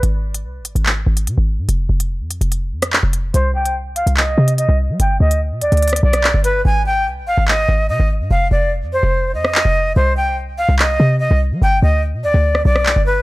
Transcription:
0.03 0.46 G#1 loud
0.03 closed hi-hat medium
0.34 closed hi-hat medium
0.45 0.62 C2 loud
0.60 0.75 G#1 loud
0.65 closed hi-hat medium
0.75 1.05 G#1 loud
0.75 closed hi-hat medium
0.86 clap loud
1.07 1.29 G#1 loud
1.17 closed hi-hat medium
1.27 1.37 C3 loud
1.27 closed hi-hat medium
1.38 1.60 G#1 loud
1.58 1.68 G#2 medium
1.69 1.89 F1 loud
1.69 closed hi-hat medium
1.89 2.22 F1 loud
2.00 closed hi-hat medium
2.20 2.40 F2 loud
2.31 closed hi-hat medium
2.41 2.74 F1 loud
2.41 closed hi-hat medium
2.52 closed hi-hat medium
2.72 3.02 F2 loud
2.82 cross-stick medium
2.82 closed hi-hat medium
2.93 clap loud
3.03 3.33 F1 loud
3.13 closed hi-hat medium
3.34 4.04 C2 loud
3.34 3.54 C5 medium
3.34 closed hi-hat medium
3.55 3.74 G5 medium
3.65 closed hi-hat medium
3.96 4.16 F5 medium
3.96 closed hi-hat medium
4.07 4.36 C2 loud
4.07 closed hi-hat medium
4.17 4.56 D#5 medium
4.17 clap loud
4.38 4.67 C3 loud
4.48 closed hi-hat medium
4.58 4.78 D#5 medium
4.58 closed hi-hat medium
4.69 4.91 C2 loud
4.89 4.99 G3 loud
5.00 5.20 G1 loud
5.00 5.20 G5 medium
5.00 closed hi-hat medium
5.20 5.53 D2 loud
5.20 5.40 D#5 medium
5.31 closed hi-hat medium
5.51 5.63 B2 loud
5.61 5.72 D2 loud
5.61 6.01 D5 medium
5.61 closed hi-hat medium
5.72 6.02 D2 loud
5.72 closed hi-hat soft
5.77 closed hi-hat medium
5.82 closed hi-hat medium
5.88 closed hi-hat medium
5.89 cross-stick medium
5.89 closed hi-hat medium
5.96 closed hi-hat medium
6.03 6.33 B1 loud
6.03 6.42 D5 medium
6.13 cross-stick medium
6.13 closed hi-hat medium
6.24 clap loud
6.34 6.64 G1 loud
6.44 6.64 B4 medium
6.44 closed hi-hat medium
6.65 7.08 G#1 loud
6.65 6.85 G#5 medium
6.86 7.06 G5 medium
7.07 7.24 C2 loud
7.22 7.37 G#1 loud
7.27 7.47 F5 medium
7.38 7.67 G#1 loud
7.48 7.87 D#5 loud
7.48 clap loud
7.69 7.91 G#1 loud
7.89 7.99 C3 loud
7.89 8.09 D#5 medium
8.00 8.22 G#1 loud
8.20 8.30 G#2 loud
8.31 8.51 F1 loud
8.31 8.50 F5 medium
8.51 8.84 F1 loud
8.51 8.71 D5 medium
8.82 9.02 F2 loud
8.93 9.32 C5 medium
9.03 9.36 F1 loud
9.34 9.64 F2 loud
9.34 9.93 D#5 medium
9.45 cross-stick medium
9.55 clap loud
9.65 9.95 F1 loud
9.96 10.66 C2 loud
9.96 10.16 C5 medium
10.17 10.37 G5 medium
10.58 10.78 F5 medium
10.69 10.98 C2 loud
10.79 11.18 D#5 medium
10.79 clap loud
11.00 11.29 C3 loud
11.20 11.40 D#5 medium
11.31 11.53 C2 loud
11.51 11.61 G3 loud
11.62 11.82 G1 loud
11.62 11.82 G5 medium
11.82 12.15 D2 loud
11.82 12.02 D#5 medium
12.13 12.25 B2 loud
12.24 12.34 D2 loud
12.24 12.63 D5 medium
12.34 12.64 D2 loud
12.55 cross-stick medium
12.65 12.95 B1 loud
12.65 13.04 D5 medium
12.76 cross-stick medium
12.86 clap loud
12.96 13.22 G1 loud
13.06 13.22 B4 medium

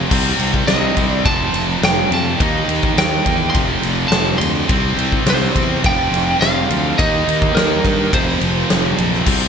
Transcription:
0.00 0.11 F3 medium
0.10 0.34 C2 medium
0.10 0.95 C3 medium
0.10 0.96 G3 medium
0.10 0.95 C4 medium
0.10 kick loud
0.10 crash loud
0.39 0.62 C2 medium
0.39 ride medium
0.54 kick loud
0.67 0.90 C2 medium
0.67 1.10 D#5 medium
0.67 snare loud
0.67 ride loud
0.96 1.20 C2 medium
0.96 1.25 C3 medium
0.96 1.24 G3 medium
0.96 1.24 C4 medium
0.96 kick medium
0.96 ride medium
1.10 1.27 D5 medium
1.25 1.48 F1 loud
1.25 2.09 F2 medium
1.25 2.10 C3 medium
1.25 2.10 F3 loud
1.25 1.84 A5 loud
1.25 kick loud
1.25 ride loud
1.53 1.76 F1 loud
1.53 ride medium
1.82 2.05 F1 loud
1.82 2.10 G5 loud
1.82 snare loud
1.82 ride loud
2.11 2.34 F2 medium
2.11 2.40 F2 medium
2.11 2.39 C3 medium
2.11 2.38 F3 medium
2.11 2.39 A5 medium
2.11 ride medium
2.40 2.63 D#2 medium
2.40 3.24 D#3 loud
2.40 3.25 A#3 medium
2.40 3.25 D#4 loud
2.40 kick loud
2.40 ride loud
2.68 2.91 D#2 medium
2.68 ride medium
2.83 kick loud
2.96 3.19 D#2 medium
2.96 3.57 G5 medium
2.96 snare loud
2.96 ride loud
3.26 3.49 E2 medium
3.26 3.54 D#3 medium
3.26 3.54 A#3 medium
3.26 3.53 D#4 medium
3.26 kick medium
3.26 ride medium
3.50 4.38 F2 medium
3.50 4.11 C6 loud
3.54 3.77 F1 loud
3.54 4.39 C3 medium
3.54 4.39 F3 loud
3.54 kick loud
3.54 ride loud
3.82 4.05 F1 medium
3.82 ride medium
4.08 4.34 F1 loud
4.08 4.40 A5 medium
4.08 snare loud
4.08 ride loud
4.38 4.63 D2 medium
4.38 4.67 C3 medium
4.38 4.67 F3 medium
4.38 4.66 C6 medium
4.38 ride medium
4.43 4.69 F2 medium
4.68 4.92 C2 loud
4.68 5.53 C3 medium
4.68 5.54 G3 medium
4.68 5.53 C4 loud
4.68 kick loud
4.68 ride loud
4.96 5.19 C2 medium
4.96 ride medium
5.12 kick loud
5.25 5.48 C2 medium
5.25 snare loud
5.25 ride loud
5.30 5.87 C5 loud
5.54 5.78 E2 medium
5.54 5.83 C3 medium
5.54 5.83 G3 medium
5.54 5.82 C4 medium
5.54 kick medium
5.54 ride medium
5.83 6.07 F1 medium
5.83 6.67 F2 loud
5.83 6.68 C3 medium
5.83 6.67 F3 medium
5.83 6.44 G5 loud
5.83 kick loud
5.83 ride loud
6.11 6.34 F1 loud
6.11 ride medium
6.40 6.63 F1 medium
6.40 6.98 F5 loud
6.40 snare loud
6.40 ride loud
6.68 6.92 D2 medium
6.68 6.97 F2 medium
6.68 6.96 C3 medium
6.68 6.96 F3 medium
6.68 ride medium
6.98 7.21 D#2 loud
6.98 7.82 D#3 medium
6.98 7.83 A#3 loud
6.98 7.83 D#4 medium
6.98 7.57 D#5 loud
6.98 kick loud
6.98 ride loud
7.28 7.50 D#2 medium
7.28 ride medium
7.42 kick loud
7.55 7.78 D#2 medium
7.55 8.14 A#4 medium
7.55 snare loud
7.55 ride loud
7.84 8.07 G2 medium
7.84 8.12 D#3 medium
7.84 8.11 A#3 medium
7.84 8.11 D#4 medium
7.84 kick medium
7.84 ride medium
8.12 8.35 F1 medium
8.12 8.96 F2 medium
8.12 8.97 C3 medium
8.12 8.96 F3 loud
8.12 8.95 C5 medium
8.12 kick loud
8.12 ride loud
8.41 8.64 F1 loud
8.41 ride medium
8.70 8.93 F1 medium
8.70 snare loud
8.70 ride loud
8.97 9.21 A#1 medium
8.97 9.26 F2 medium
8.97 9.25 C3 medium
8.97 9.25 F3 medium
8.97 ride medium
9.13 snare soft
9.26 9.48 C2 loud
9.26 9.48 C3 medium
9.26 9.48 G3 loud
9.26 9.48 C4 loud
9.26 kick loud
9.26 crash loud

